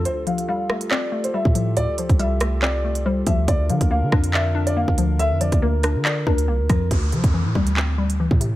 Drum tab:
HH |x-xx---x---x--x-|x-xxx-x----x--x-|x-xx---x---x--x-|x-xx--x----x--x-|
CP |--------x-------|--------x-------|--------x-------|--------x-------|
SD |------r---------|------r---------|------r---------|------r-------r-|
BD |-------------o--|---o----------o-|o--o--o------o--|---o------o---o-|

HH |x-xx---x---x--x-|
CP |--------x-------|
SD |----------------|
BD |o--o--o------o--|